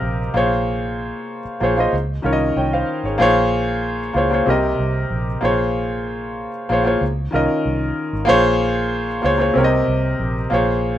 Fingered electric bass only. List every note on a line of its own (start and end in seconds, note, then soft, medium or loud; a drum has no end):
0.02 0.28 A#1 medium
0.34 1.11 A#1 medium
1.45 muted fingered electric bass stroke soft
1.61 1.87 A#1 medium
1.93 2.18 C#2 medium
2.24 2.50 C2 medium
2.56 2.82 C2 medium
3.03 3.17 G#1 medium
3.20 4.11 A#1 medium
4.15 4.41 C#2 medium
4.47 4.73 C2 medium
4.79 5.05 C2 medium
5.10 5.36 A#1 medium
5.42 6.45 A#1 medium
6.70 6.95 A#1 medium
7.01 7.27 C#2 loud
7.34 7.46 C2 medium
7.65 7.91 C2 medium
8.13 8.26 G#1 medium
8.29 9.20 A#1 loud
9.24 9.50 C#2 medium
9.56 9.81 C2 medium
9.88 10.14 C2 medium
10.20 10.45 A#1 medium
10.51 10.98 A#1 medium